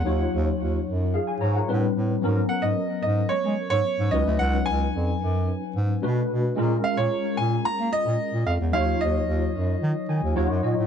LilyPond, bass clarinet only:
\new Staff \with { instrumentName = "Bass clarinet" } { \clef bass \time 4/4 \key ees \minor \tempo 4 = 110 ees,8 ees,8 ees,8 ges,8. r16 aes,8 a,8 a,8 | aes,8 r16 aes,16 r8 aes,8 aes16 aes16 r16 aes,16 r16 aes,16 des,16 d,16 | des,8 des,8 f,8 ges,8. r16 aes,8 b,8 b,8 | bes,8 r16 bes,16 r8 bes,8 bes16 bes16 r16 bes,16 r16 bes,16 f,16 fes,16 |
ees,8 ees,8 ees,8 ges,8 ees16 r16 ees16 ees,16 ees,16 ges,16 bes,16 a,16 | }